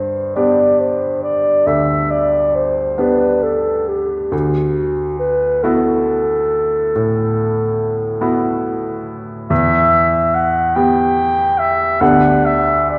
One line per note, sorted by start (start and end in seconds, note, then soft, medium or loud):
0.00 0.32 G2 soft
0.00 0.34 C5 soft
0.35 1.63 B3 soft
0.35 1.63 D4 soft
0.35 1.63 G4 soft
0.35 0.81 D5 soft
0.80 1.22 C5 soft
1.23 1.68 D5 medium
1.67 2.95 D2 soft
1.67 2.13 E5 medium
2.11 2.57 D5 medium
2.55 3.00 C5 soft
2.98 4.28 B3 soft
2.98 4.28 D4 soft
2.98 4.29 G4 soft
2.98 3.45 B4 soft
3.43 3.90 A4 medium
3.88 4.34 G4 soft
4.32 5.60 D2 soft
4.32 5.18 F#4 medium
5.19 5.64 B4 medium
5.63 6.91 B3 soft
5.63 6.91 E4 soft
5.63 6.92 F#4 soft
5.63 9.07 A4 medium
6.96 8.18 A2 soft
8.21 9.46 B3 soft
8.21 9.47 E4 soft
8.21 9.47 F#4 soft
9.50 10.72 E2 soft
9.50 10.36 E5 medium
10.35 10.76 F#5 medium
10.75 11.98 B3 soft
10.75 11.98 G4 soft
10.75 11.60 G5 medium
11.58 12.02 E5 medium
12.01 12.99 D2 soft
12.01 12.99 B3 soft
12.01 12.99 D4 soft
12.01 12.99 G4 soft
12.01 12.47 F#5 medium
12.45 12.90 E5 medium
12.90 12.99 D5 medium